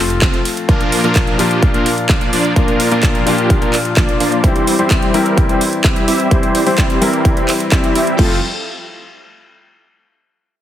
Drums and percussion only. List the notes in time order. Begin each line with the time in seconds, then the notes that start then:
0.10 closed hi-hat
0.22 kick, clap, closed hi-hat
0.34 closed hi-hat
0.45 open hi-hat
0.57 closed hi-hat
0.69 kick, closed hi-hat
0.81 closed hi-hat
0.92 open hi-hat
1.04 closed hi-hat
1.16 kick, clap, closed hi-hat
1.27 closed hi-hat
1.39 open hi-hat
1.51 closed hi-hat
1.63 kick, closed hi-hat
1.74 closed hi-hat
1.86 open hi-hat
1.98 closed hi-hat
2.09 kick, clap, closed hi-hat
2.21 closed hi-hat
2.33 open hi-hat
2.45 closed hi-hat
2.56 kick, closed hi-hat
2.68 closed hi-hat
2.80 open hi-hat
2.92 closed hi-hat
3.03 kick, clap, closed hi-hat
3.15 closed hi-hat
3.27 open hi-hat
3.38 closed hi-hat
3.50 kick, closed hi-hat
3.62 closed hi-hat
3.73 clap, open hi-hat
3.85 closed hi-hat
3.97 kick, clap, closed hi-hat
4.09 closed hi-hat
4.20 open hi-hat
4.32 closed hi-hat
4.44 kick, closed hi-hat
4.56 closed hi-hat
4.67 open hi-hat
4.79 closed hi-hat
4.91 kick, clap, closed hi-hat
5.02 closed hi-hat
5.14 open hi-hat
5.26 closed hi-hat
5.38 kick, closed hi-hat
5.49 closed hi-hat
5.61 open hi-hat
5.73 closed hi-hat
5.84 kick, clap, closed hi-hat
5.96 closed hi-hat
6.08 open hi-hat
6.20 closed hi-hat
6.31 kick, closed hi-hat
6.43 closed hi-hat
6.55 open hi-hat
6.67 open hi-hat
6.78 kick, clap, closed hi-hat
6.90 closed hi-hat
7.02 open hi-hat
7.13 closed hi-hat
7.25 kick, closed hi-hat
7.37 closed hi-hat
7.48 clap, open hi-hat
7.60 closed hi-hat
7.72 kick, clap, closed hi-hat
7.84 closed hi-hat
7.95 open hi-hat
8.07 closed hi-hat
8.19 kick, crash